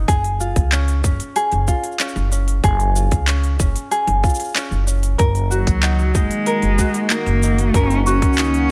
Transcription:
0.00 0.15 D#4 medium
0.00 0.15 F#4 medium
0.08 0.52 F#1 medium
0.08 1.35 G#4 medium
0.08 kick loud
0.08 open hi-hat medium
0.08 shaker soft
0.24 open hi-hat soft
0.24 shaker soft
0.40 1.66 F4 medium
0.40 shaker medium
0.56 1.00 C#2 medium
0.56 kick loud
0.56 open hi-hat soft
0.56 shaker soft
0.72 1.04 C#4 medium
0.72 clap medium
0.72 open hi-hat medium
0.72 shaker soft
0.88 open hi-hat soft
0.88 shaker soft
1.04 1.17 F#1 medium
1.04 1.99 C#4 medium
1.04 kick medium
1.04 shaker medium
1.20 open hi-hat soft
1.20 shaker soft
1.36 2.63 G#4 medium
1.36 open hi-hat medium
1.36 shaker soft
1.52 1.65 F#1 medium
1.52 open hi-hat soft
1.52 shaker soft
1.68 2.94 F4 medium
1.68 kick medium
1.68 shaker medium
1.84 open hi-hat soft
1.84 shaker soft
1.92 shaker soft
1.99 2.31 C#4 medium
1.99 clap medium
1.99 open hi-hat soft
1.99 shaker soft
2.08 shaker soft
2.16 2.59 F#1 loud
2.16 shaker soft
2.32 3.27 C#4 medium
2.32 shaker medium
2.48 open hi-hat soft
2.48 shaker soft
2.64 3.07 F#1 medium
2.64 3.90 G#4 medium
2.64 kick loud
2.64 open hi-hat medium
2.64 shaker soft
2.80 open hi-hat soft
2.80 shaker soft
2.95 4.22 F4 medium
2.95 shaker medium
3.11 3.55 C#2 medium
3.11 kick medium
3.11 open hi-hat soft
3.11 shaker soft
3.27 3.59 C#4 medium
3.27 clap loud
3.27 open hi-hat medium
3.27 shaker soft
3.44 open hi-hat soft
3.44 shaker soft
3.60 3.73 F#1 medium
3.60 4.54 C#4 medium
3.60 kick medium
3.60 shaker medium
3.76 open hi-hat soft
3.76 shaker soft
3.91 5.19 G#4 medium
3.91 open hi-hat medium
3.91 shaker soft
4.07 4.21 F#1 medium
4.07 open hi-hat soft
4.23 5.25 F4 medium
4.23 kick medium
4.23 shaker soft
4.29 shaker soft
4.35 shaker medium
4.40 open hi-hat soft
4.40 shaker soft
4.44 shaker soft
4.48 shaker soft
4.52 4.86 C#4 medium
4.52 clap medium
4.52 open hi-hat medium
4.52 shaker soft
4.56 shaker soft
4.68 5.15 F#1 medium
4.68 shaker soft
4.72 shaker soft
4.87 5.82 C#4 medium
4.87 shaker medium
5.03 open hi-hat soft
5.03 shaker soft
5.18 5.63 F#1 medium
5.18 8.71 D#3 medium
5.18 8.71 A#3 medium
5.18 8.71 F#4 medium
5.18 6.45 A#4 medium
5.18 kick loud
5.18 open hi-hat soft
5.18 shaker soft
5.35 open hi-hat soft
5.35 shaker soft
5.51 6.15 F#3 medium
5.51 6.78 F#4 medium
5.51 shaker medium
5.67 6.11 C#2 medium
5.67 kick loud
5.67 open hi-hat soft
5.67 shaker soft
5.83 6.14 D#4 medium
5.83 6.13 F#5 medium
5.83 clap loud
5.83 open hi-hat medium
5.83 shaker soft
5.99 shaker soft
6.14 6.28 F#1 medium
6.14 7.12 G#3 medium
6.14 7.10 D#4 medium
6.14 kick medium
6.14 shaker medium
6.31 open hi-hat soft
6.31 shaker soft
6.46 7.74 A#4 medium
6.46 open hi-hat medium
6.46 shaker soft
6.62 6.76 F#1 medium
6.62 open hi-hat soft
6.62 shaker soft
6.79 8.06 F#4 medium
6.79 7.09 F#6 medium
6.79 kick medium
6.79 shaker medium
6.94 open hi-hat soft
6.94 shaker soft
7.10 7.76 A#3 medium
7.10 7.42 D#4 medium
7.10 clap medium
7.10 open hi-hat medium
7.10 shaker soft
7.26 7.70 F#1 loud
7.26 shaker soft
7.43 8.38 D#4 medium
7.43 shaker medium
7.58 open hi-hat soft
7.58 shaker soft
7.74 8.18 F#1 loud
7.74 8.06 C#4 loud
7.74 8.71 A#4 medium
7.74 kick loud
7.74 open hi-hat soft
7.74 shaker soft
7.90 open hi-hat soft
7.90 shaker soft
8.06 8.71 C#4 loud
8.06 8.71 F#4 medium
8.06 8.24 C#6 medium
8.06 shaker medium
8.22 8.66 C#2 medium
8.22 kick loud
8.22 open hi-hat soft
8.22 shaker soft
8.33 shaker soft
8.38 8.70 D#4 medium
8.38 clap loud
8.38 open hi-hat medium
8.38 shaker soft
8.54 open hi-hat soft
8.54 shaker soft

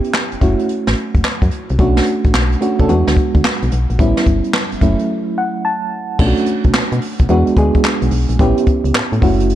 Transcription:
0.00 0.21 B3 medium
0.00 0.22 C#4 medium
0.00 0.22 E4 medium
0.00 0.22 G4 medium
0.04 closed hi-hat soft
0.14 snare loud
0.14 clap medium
0.32 0.36 F#1 soft
0.32 closed hi-hat medium
0.41 0.56 F#1 loud
0.41 1.31 A3 medium
0.41 1.31 C#4 medium
0.41 1.31 E4 medium
0.41 1.32 F#4 medium
0.41 kick medium
0.41 closed hi-hat medium
0.59 closed hi-hat soft
0.69 closed hi-hat medium
0.87 0.95 A1 medium
0.87 snare medium
0.87 closed hi-hat medium
0.97 closed hi-hat medium
1.15 1.22 F#1 medium
1.15 kick medium
1.15 closed hi-hat soft
1.24 snare loud
1.24 clap medium
1.42 1.50 F#2 loud
1.42 kick medium
1.42 closed hi-hat medium
1.51 closed hi-hat medium
1.69 1.78 C2 medium
1.69 closed hi-hat soft
1.79 2.01 B1 loud
1.79 2.42 A3 medium
1.79 2.42 C#4 medium
1.79 2.42 D4 medium
1.79 2.42 F#4 loud
1.79 kick loud
1.79 closed hi-hat medium
1.97 snare medium
1.97 closed hi-hat medium
2.06 closed hi-hat medium
2.24 2.35 A1 medium
2.24 kick medium
2.24 closed hi-hat soft
2.34 2.56 B1 medium
2.34 snare loud
2.34 clap medium
2.52 closed hi-hat soft
2.61 2.75 A3 medium
2.61 2.75 C#4 medium
2.61 2.75 D4 medium
2.61 2.75 F#4 medium
2.61 closed hi-hat medium
2.79 2.87 B1 medium
2.79 2.89 A3 medium
2.79 2.89 C#4 medium
2.79 2.88 D4 medium
2.79 2.89 A4 medium
2.79 kick medium
2.79 closed hi-hat soft
2.88 3.04 E2 loud
2.88 3.79 G#3 medium
2.88 3.79 B3 medium
2.88 3.79 D4 medium
2.88 3.79 F#4 loud
2.88 closed hi-hat medium
3.07 3.15 D2 medium
3.07 snare medium
3.07 closed hi-hat medium
3.17 kick medium
3.17 closed hi-hat medium
3.35 3.42 D2 medium
3.35 kick medium
3.35 closed hi-hat soft
3.44 snare loud
3.44 clap medium
3.62 3.70 B1 medium
3.62 closed hi-hat medium
3.71 3.87 B1 medium
3.71 closed hi-hat medium
3.90 3.97 A#1 medium
3.90 closed hi-hat soft
3.99 4.14 A1 loud
3.99 4.62 G3 medium
3.99 4.62 B3 medium
3.99 4.62 C#4 medium
3.99 4.62 E4 loud
3.99 kick loud
3.99 closed hi-hat medium
4.17 snare medium
4.17 closed hi-hat medium
4.26 4.41 G1 medium
4.26 kick medium
4.26 closed hi-hat medium
4.44 closed hi-hat soft
4.53 snare loud
4.53 clap medium
4.72 4.76 F#1 soft
4.72 closed hi-hat medium
4.81 4.96 F#1 loud
4.81 5.71 F#3 medium
4.81 5.72 A3 medium
4.81 5.72 C#4 medium
4.81 5.72 E4 medium
4.81 kick medium
4.81 closed hi-hat medium
4.99 closed hi-hat soft
5.38 5.63 F#5 medium
5.65 6.16 A5 medium
6.19 6.34 B1 loud
6.19 7.01 A3 medium
6.19 7.01 C#4 medium
6.19 7.01 D4 medium
6.19 6.28 F4 medium
6.19 kick loud
6.19 crash loud
6.27 7.05 F#4 medium
6.37 closed hi-hat medium
6.46 closed hi-hat medium
6.64 6.72 B1 medium
6.64 kick medium
6.64 closed hi-hat soft
6.74 snare loud
6.74 clap medium
6.92 7.00 B2 medium
6.92 closed hi-hat medium
7.01 open hi-hat medium
7.19 7.27 B1 medium
7.19 kick medium
7.19 closed hi-hat soft
7.29 7.44 E2 loud
7.29 7.53 G#3 medium
7.29 7.53 B3 medium
7.29 7.53 D4 medium
7.29 7.54 F#4 loud
7.29 closed hi-hat medium
7.47 7.51 D2 soft
7.47 closed hi-hat medium
7.57 7.71 D2 medium
7.57 8.20 G#3 medium
7.57 8.20 B3 medium
7.57 8.20 D4 medium
7.57 8.20 G#4 medium
7.57 kick medium
7.57 closed hi-hat medium
7.74 kick medium
7.74 closed hi-hat soft
7.84 snare loud
7.84 clap medium
8.02 8.10 B1 medium
8.02 closed hi-hat medium
8.11 8.26 B1 medium
8.11 open hi-hat medium
8.29 8.37 A#1 medium
8.29 closed hi-hat soft
8.39 8.54 A1 loud
8.39 9.21 B3 medium
8.39 9.21 C#4 medium
8.39 9.21 E4 medium
8.39 9.22 G4 loud
8.39 kick loud
8.39 closed hi-hat medium
8.57 closed hi-hat medium
8.66 kick medium
8.66 closed hi-hat medium
8.84 8.92 C#2 medium
8.84 closed hi-hat medium
8.94 9.02 A2 soft
8.94 snare loud
8.94 clap medium
9.12 9.20 A2 medium
9.12 closed hi-hat medium
9.22 9.55 F#1 loud
9.22 9.55 A3 medium
9.22 9.55 C#4 medium
9.22 9.55 E4 medium
9.22 9.55 F#4 medium
9.22 kick medium
9.22 open hi-hat medium
9.40 closed hi-hat soft
9.50 closed hi-hat medium

